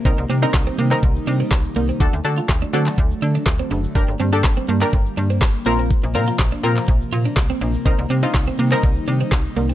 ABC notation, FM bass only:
X:1
M:4/4
L:1/16
Q:1/4=123
K:Cdor
V:1 name="FM bass" clef=bass
C,, C,, C,2 C,,2 C,2 C,,2 C,2 C,,2 C,,2 | D,, D,, D,2 D,,2 D,2 D,,2 D,2 D,,2 ^F,,,2 | G,,, G,,, G,,2 G,,,2 G,,2 G,,,2 G,,2 G,,,2 B,,,2- | B,,, B,,, B,,2 B,,,2 B,,2 B,,,2 B,,2 C,,2 B,,,2 |
C,, C,, C,2 C,,2 C,2 C,,2 C,2 C,,2 C,,2 |]